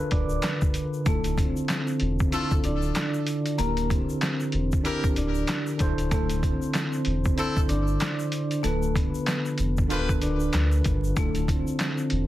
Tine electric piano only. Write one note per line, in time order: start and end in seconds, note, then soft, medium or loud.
0.00 1.04 D3 loud
0.00 1.05 D4 medium
0.00 1.08 F4 medium
0.00 1.08 A4 medium
0.00 1.09 A#4 medium
0.00 1.08 B4 loud
1.04 2.07 D3 medium
1.04 2.08 D4 medium
1.04 2.08 E4 medium
1.04 2.09 F4 medium
1.09 2.09 A4 medium
2.31 3.34 D3 medium
2.31 3.34 D4 medium
2.31 3.35 E4 medium
2.31 3.35 F4 medium
2.35 3.36 A4 loud
3.57 4.60 D3 medium
3.57 4.61 D4 medium
3.57 4.61 E4 medium
3.57 4.62 G4 medium
3.62 4.62 A#4 medium
4.82 5.75 D3 medium
4.82 5.77 D4 medium
4.82 5.78 E4 medium
4.82 5.80 G4 medium
4.87 5.81 A#4 loud
5.77 6.05 D3 medium
5.77 6.05 D4 medium
5.77 6.06 E4 medium
5.77 6.06 A4 medium
5.81 6.07 C5 loud
6.10 7.13 D3 medium
6.10 7.13 D4 medium
6.10 7.14 E4 medium
6.10 7.14 A4 medium
6.15 7.15 C5 medium
7.36 8.39 D3 medium
7.36 8.39 D4 medium
7.36 8.40 E4 medium
7.36 8.40 A4 medium
7.40 8.41 C5 loud
8.62 9.65 D3 medium
8.62 9.66 D4 medium
8.62 9.66 F4 medium
8.62 9.67 A4 medium
8.67 9.67 B4 medium
9.88 10.91 D3 loud
9.88 10.92 D4 medium
9.88 10.92 F4 medium
9.88 10.93 A4 medium
9.93 9.99 A#4 medium
9.99 10.97 B4 loud
11.15 12.18 D3 medium
11.15 12.18 D4 medium
11.15 12.19 E4 medium
11.15 12.19 F4 medium
11.20 12.20 A4 medium